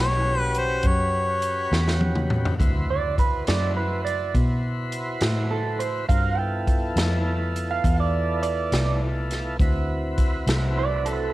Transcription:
0.00 0.82 B1 medium
0.00 2.55 C#4 medium
0.00 2.55 F#4 medium
0.00 2.55 G4 medium
0.00 2.55 B4 medium
0.00 0.40 C#5 medium
0.40 0.60 B4 medium
0.55 0.89 C5 medium
0.55 closed hi-hat soft
0.83 1.69 F#2 medium
0.83 kick medium
0.83 closed hi-hat medium
0.87 2.03 C#5 medium
1.42 closed hi-hat medium
1.72 2.57 E2 medium
1.72 snare soft
1.88 snare soft
2.01 high tom medium
2.15 mid tom medium
2.30 mid tom medium
2.45 floor tom medium
2.59 3.44 D2 medium
2.59 6.07 E4 soft
2.59 6.06 F#4 medium
2.59 6.06 B4 medium
2.59 6.07 C5 soft
2.59 kick medium
2.59 closed hi-hat medium
2.90 3.18 D5 medium
3.18 3.47 B4 medium
3.18 kick medium
3.18 closed hi-hat soft
3.47 4.33 F#2 medium
3.47 3.76 D5 medium
3.47 snare medium
3.47 closed hi-hat medium
3.77 4.04 B4 medium
4.05 4.33 D5 medium
4.05 closed hi-hat soft
4.35 5.20 B2 medium
4.35 kick medium
4.35 closed hi-hat medium
4.92 closed hi-hat soft
5.21 6.07 A2 medium
5.21 snare medium
5.21 closed hi-hat medium
5.51 5.79 A4 medium
5.79 6.08 C5 medium
5.79 closed hi-hat soft
6.08 6.95 G2 medium
6.08 6.38 C4 medium
6.08 6.37 F4 soft
6.08 6.39 F#4 medium
6.08 6.38 A#4 soft
6.08 6.38 F5 medium
6.08 kick medium
6.08 closed hi-hat medium
6.38 9.58 B3 medium
6.38 9.56 E4 medium
6.38 9.57 F4 medium
6.38 9.57 A4 medium
6.38 7.66 G5 medium
6.67 kick medium
6.67 closed hi-hat medium
6.96 7.82 F2 medium
6.96 snare medium
6.96 closed hi-hat medium
7.56 closed hi-hat soft
7.71 7.99 F5 medium
7.84 8.70 E2 medium
7.84 kick medium
7.84 closed hi-hat medium
8.00 8.41 D5 medium
8.43 9.00 D5 medium
8.43 closed hi-hat soft
8.72 9.57 C2 medium
8.72 snare medium
8.72 closed hi-hat medium
9.31 snare soft
9.31 closed hi-hat soft
9.60 10.45 D2 medium
9.60 11.33 C4 medium
9.60 11.33 E4 medium
9.60 11.33 F#4 medium
9.60 11.33 B4 medium
9.60 kick medium
9.60 closed hi-hat medium
10.18 kick medium
10.18 closed hi-hat soft
10.47 11.32 C2 medium
10.47 snare medium
10.47 closed hi-hat medium
10.78 11.06 D5 medium
11.06 11.33 A4 medium
11.06 closed hi-hat soft

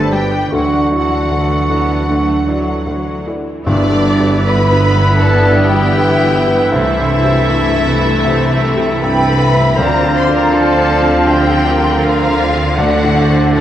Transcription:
0.00 0.49 G1 medium
0.00 0.55 G1 medium
0.00 0.55 G2 medium
0.00 0.13 G3 medium
0.00 0.48 G3 medium
0.00 0.13 A3 medium
0.00 0.48 D4 medium
0.00 0.13 G4 medium
0.00 0.10 A4 medium
0.00 0.13 A4 medium
0.00 0.14 A4 medium
0.00 0.13 B4 medium
0.00 0.13 C5 medium
0.00 0.13 D5 medium
0.00 0.13 A5 loud
0.12 0.52 G3 medium
0.12 0.32 B3 soft
0.12 0.50 G4 medium
0.12 0.32 G4 medium
0.12 0.51 G4 medium
0.12 0.48 G4 soft
0.12 0.53 G4 medium
0.12 0.52 B4 medium
0.12 0.48 D5 soft
0.12 0.53 G5 medium
0.33 0.52 G3 soft
0.33 0.52 B4 soft
0.50 0.91 D2 medium
0.50 3.45 D2 medium
0.50 0.91 D3 medium
0.50 3.29 E3 medium
0.50 3.23 F#3 medium
0.50 0.72 F#3 medium
0.50 3.29 D4 medium
0.50 0.71 E4 medium
0.50 3.22 F#4 medium
0.50 3.23 F#4 medium
0.50 3.28 A4 medium
0.50 3.24 F#5 medium
0.73 0.92 A3 medium
0.73 0.92 D4 medium
0.92 1.12 F#3 medium
0.92 1.27 E4 soft
0.92 1.12 E4 medium
0.92 1.27 A4 soft
0.92 1.28 D5 soft
1.11 1.29 A3 medium
1.11 1.31 D4 medium
1.30 1.69 D2 soft
1.30 1.69 D3 medium
1.30 1.67 A3 medium
1.70 2.08 B3 medium
1.70 2.05 E4 soft
1.70 2.05 A4 soft
1.70 2.06 D5 soft
2.09 2.47 D2 medium
2.09 2.47 D3 medium
2.09 2.48 A3 medium
2.47 2.86 F#3 medium
2.47 2.83 E4 soft
2.47 2.83 A4 soft
2.47 2.83 D5 soft
2.87 3.25 D2 medium
2.87 3.25 D3 soft
2.87 3.27 F#3 medium
3.27 3.66 E3 medium
3.27 3.62 E4 soft
3.27 3.63 A4 soft
3.27 3.63 D5 soft
3.65 6.69 G1 loud
3.65 4.80 G2 loud
3.65 5.17 G2 medium
3.65 6.69 G2 medium
3.65 9.73 E3 medium
3.65 6.68 B3 medium
3.65 6.69 B3 medium
3.65 4.41 D4 medium
3.65 9.73 E4 medium
3.65 6.69 B4 medium
3.65 4.42 D5 loud
3.65 9.73 E5 medium
3.92 4.35 D3 medium
4.19 4.61 G4 medium
4.45 4.86 D3 medium
4.45 5.21 B4 loud
4.45 5.21 B5 loud
4.71 5.12 B4 medium
4.96 5.37 D3 medium
5.20 6.69 G2 medium
5.20 5.59 A4 medium
5.20 5.93 D5 medium
5.20 5.58 A5 loud
5.47 5.87 E4 medium
5.56 6.73 G4 loud
5.56 6.71 G5 loud
5.72 6.12 G4 medium
5.96 6.37 D3 medium
5.96 6.35 E5 medium
6.21 6.62 B4 medium
6.35 6.73 B4 medium
6.46 6.72 D3 medium
6.71 8.19 C2 medium
6.71 9.73 C2 medium
6.71 9.73 C3 medium
6.71 9.78 A3 medium
6.71 12.62 C4 medium
6.71 9.00 E4 medium
6.71 9.59 A4 medium
6.71 7.46 C5 medium
6.71 9.01 E5 loud
6.98 7.38 G2 medium
7.24 7.64 G4 medium
7.48 7.89 G2 medium
7.48 7.86 A4 medium
7.73 8.13 A4 medium
7.87 8.24 B4 medium
7.99 8.39 G2 medium
8.24 9.73 C2 medium
8.24 8.62 C5 medium
8.51 8.92 E4 medium
8.64 9.02 A4 medium
8.76 9.17 G4 medium
9.00 9.43 G2 medium
9.00 9.77 B4 loud
9.00 9.40 G5 loud
9.00 9.77 B5 loud
9.29 9.68 A4 medium
9.42 9.78 E5 loud
9.54 9.78 G2 medium
9.76 11.23 D2 medium
9.76 13.61 D2 medium
9.76 13.61 D3 medium
9.76 10.86 D3 loud
9.76 12.62 F3 medium
9.76 12.74 C4 medium
9.76 12.74 F4 medium
9.76 10.14 A#4 medium
9.76 12.45 C5 medium
9.76 11.24 D5 loud
9.76 12.46 F5 medium
9.76 10.15 A#5 loud
10.03 10.42 D3 medium
10.14 10.33 C5 medium
10.14 10.34 C6 loud
10.28 10.67 F4 medium
10.34 10.52 A#4 loud
10.34 10.53 A#5 medium
10.53 10.92 D3 medium
10.53 11.27 A4 loud
10.53 11.27 A5 loud
10.77 11.17 C5 medium
11.02 11.42 D3 medium
11.26 12.73 D2 medium
11.26 12.00 G4 loud
11.26 11.66 C5 medium
11.26 12.03 G5 loud
11.53 11.93 D4 medium
11.65 12.55 A#4 loud
11.78 12.18 F4 medium
12.01 12.43 D3 medium
12.01 12.77 F4 medium
12.01 12.77 F5 loud
12.28 12.68 C5 medium
12.53 12.78 D3 medium
12.77 13.61 D2 medium
12.77 13.61 D3 medium
12.77 13.61 A3 medium
12.77 13.61 D4 medium
12.77 13.61 D4 loud
12.77 13.51 F#4 medium
12.77 13.61 A4 medium
12.77 13.61 D5 medium
12.77 13.14 D5 medium
12.77 13.53 F#5 loud
13.04 13.43 A2 medium
13.17 13.53 C5 medium
13.29 13.61 A4 medium
13.53 13.61 A2 medium
13.53 13.61 F#4 medium
13.53 13.61 B4 medium
13.53 13.61 F#5 loud

